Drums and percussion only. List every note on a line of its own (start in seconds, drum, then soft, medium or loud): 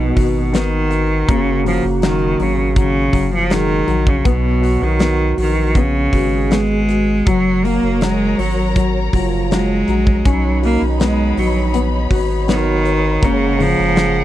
0.17 kick medium
0.17 hi-hat pedal medium
0.17 open hi-hat medium
0.54 snare loud
0.54 hi-hat pedal medium
0.54 open hi-hat medium
0.91 hi-hat pedal medium
0.91 open hi-hat medium
1.29 kick loud
1.29 hi-hat pedal medium
1.29 open hi-hat medium
1.66 hi-hat pedal medium
1.66 open hi-hat medium
2.02 snare loud
2.02 hi-hat pedal medium
2.02 open hi-hat medium
2.40 hi-hat pedal medium
2.40 open hi-hat medium
2.76 kick loud
2.76 hi-hat pedal medium
2.76 open hi-hat loud
3.13 kick medium
3.13 hi-hat pedal medium
3.13 open hi-hat medium
3.50 snare loud
3.50 hi-hat pedal medium
3.50 open hi-hat medium
3.88 hi-hat pedal medium
3.88 open hi-hat medium
4.07 kick loud
4.25 kick loud
4.25 hi-hat pedal medium
4.25 open hi-hat medium
4.63 hi-hat pedal medium
4.63 open hi-hat medium
4.99 snare loud
4.99 hi-hat pedal medium
4.99 open hi-hat medium
5.38 hi-hat pedal medium
5.38 open hi-hat medium
5.75 kick medium
5.75 hi-hat pedal medium
5.75 open hi-hat loud
6.13 kick medium
6.13 hi-hat pedal medium
6.13 open hi-hat medium
6.51 snare loud
6.51 hi-hat pedal medium
6.51 open hi-hat medium
6.89 hi-hat pedal medium
6.89 open hi-hat medium
7.27 kick loud
7.27 hi-hat pedal medium
7.27 open hi-hat medium
7.65 hi-hat pedal medium
7.65 open hi-hat medium
8.01 snare loud
8.01 hi-hat pedal medium
8.01 open hi-hat medium
8.39 hi-hat pedal medium
8.39 open hi-hat medium
8.76 kick loud
8.76 hi-hat pedal medium
8.76 open hi-hat loud
9.13 kick medium
9.13 hi-hat pedal medium
9.13 open hi-hat medium
9.51 snare loud
9.51 hi-hat pedal medium
9.51 open hi-hat medium
9.88 hi-hat pedal medium
9.88 open hi-hat medium
10.07 kick loud
10.25 kick loud
10.25 hi-hat pedal medium
10.25 open hi-hat medium
10.63 hi-hat pedal medium
10.63 open hi-hat medium
11.00 snare loud
11.00 hi-hat pedal medium
11.00 open hi-hat medium
11.37 hi-hat pedal medium
11.37 open hi-hat medium
11.74 hi-hat pedal medium
11.74 open hi-hat loud
12.11 kick medium
12.11 hi-hat pedal medium
12.11 open hi-hat medium
12.48 snare loud
12.48 hi-hat pedal medium
12.48 open hi-hat medium
12.85 hi-hat pedal medium
12.85 open hi-hat medium
13.22 kick loud
13.22 hi-hat pedal medium
13.22 open hi-hat medium
13.60 hi-hat pedal medium
13.60 open hi-hat medium
13.96 snare loud
13.96 hi-hat pedal medium
13.96 open hi-hat medium